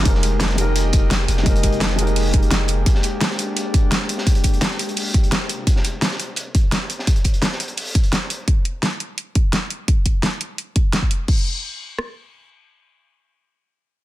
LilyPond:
<<
  \new Staff \with { instrumentName = "Felt piano" } { \time 4/4 \key c \minor \tempo 4 = 171 <aes ees' g' bes'>4. <aes ees' g' bes'>2~ <aes ees' g' bes'>8 | <aes ees' g' bes'>4. <aes ees' g' bes'>2~ <aes ees' g' bes'>8 | r1 | r1 |
r1 | r1 | r1 | r1 |
r1 | r1 | }
  \new Staff \with { instrumentName = "Analog synth pad" } { \time 4/4 \key c \minor << { <aes bes g'>1~ | <aes bes g'>1~ | <aes bes g'>1~ | <aes bes g'>2.~ <aes bes g'>8 <c g bes f'>8 |
r1 | r1 | r1 | r1 |
r1 | r1 | } \\ { ees'1~ | ees'1 | d'1~ | d'1 |
r1 | r1 | r1 | r1 |
r1 | r1 | } >> }
  \new Staff \with { instrumentName = "808-style bass" } { \clef bass \time 4/4 \key c \minor f,,2. f,,8 f,,8 | f,,2~ f,,8. g,,16 f,,4 | r1 | r1 |
r1 | r1 | r1 | r1 |
r1 | r1 | }
  \new DrumStaff \with { instrumentName = "Drums" } \drummode { \time 4/4 <hh bd>16 sn16 hh8 <hh sn>16 sn16 hh8 hh8 <hh bd>8 <hh sn>8 hh16 sn16 | <hh bd>16 hh16 <hh bd>16 hh16 <hh sn>16 sn16 hh16 hh16 <hh hho>8 <hh bd>16 hh16 <hh sn>8 hh8 | <hh bd>16 sn16 hh8 <hh sn>16 sn16 hh8 hh8 <hh bd>8 <hh sn>8 hh16 sn16 | <hh bd>16 hh16 <hh bd>16 hh16 <hh sn>16 sn16 hh16 hh16 <hh hho>8 <hh bd>16 hh16 <hh sn>8 hh8 |
<hh bd>16 sn16 hh8 <hh sn>16 sn16 hh8 hh8 <hh bd>8 <hh sn>8 hh16 sn16 | <hh bd>16 hh16 <hh bd>16 hh16 <hh sn>16 sn16 hh16 hh16 <hh hho>8 <hh bd>16 hh16 <hh sn>8 hh8 | <hh bd>8 hh8 <hh sn>8 hh8 hh8 <hh bd>8 <hh sn>8 hh8 | <hh bd>8 <hh bd>8 <hh sn>8 hh8 hh8 <hh bd>8 <hh sn>16 bd16 hh8 |
<cymc bd>4 r4 ss4 r4 | r4 r4 r4 r4 | }
>>